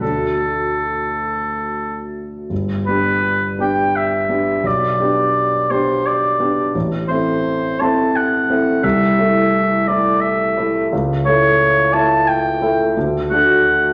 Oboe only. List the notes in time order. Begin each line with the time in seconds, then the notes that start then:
0.01 A4
2.86 B4
3.61 G5
3.96 E5
4.67 D5
5.71 C5
6.06 D5
7.08 C5
7.80 A5
8.16 F#5
8.83 E5
9.87 D5
10.21 E5
11.25 C#5
11.93 A5
12.28 G5
13.31 F#5